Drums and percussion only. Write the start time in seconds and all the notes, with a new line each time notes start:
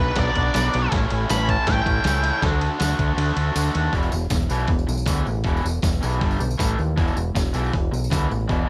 0.16 kick, snare, ride
0.36 kick, ride
0.54 snare, ride, tambourine
0.74 ride
0.92 kick, snare, ride
1.11 ride
1.30 snare, ride, tambourine
1.49 kick, ride
1.67 kick, snare, ride
1.86 kick, ride
2.04 snare, ride, tambourine
2.24 ride
2.42 kick, snare, ride
2.61 ride
2.80 snare, ride, tambourine
2.99 kick, ride
3.18 ride
3.37 ride
3.56 ride, tambourine
3.75 ride
3.93 kick, open hi-hat, tambourine
4.03 tambourine
4.12 tambourine
4.30 kick, snare, open hi-hat, tambourine
4.50 tambourine
4.68 kick, open hi-hat
4.79 tambourine
4.89 tambourine
4.97 tambourine
5.06 kick, snare, open hi-hat, tambourine
5.26 tambourine
5.44 kick, open hi-hat, tambourine
5.57 tambourine
5.66 tambourine
5.82 kick, snare, open hi-hat, tambourine
6.03 tambourine
6.12 tambourine
6.21 kick, open hi-hat
6.31 tambourine
6.40 tambourine
6.51 tambourine
6.59 kick, snare, open hi-hat, tambourine
6.69 tambourine
6.79 tambourine
6.98 kick, open hi-hat, tambourine
7.08 tambourine
7.17 tambourine
7.35 kick, snare, open hi-hat, tambourine
7.54 tambourine
7.64 tambourine
7.73 kick, open hi-hat
7.94 tambourine
8.04 tambourine
8.11 kick, snare, open hi-hat, tambourine
8.31 tambourine
8.49 kick, open hi-hat, tambourine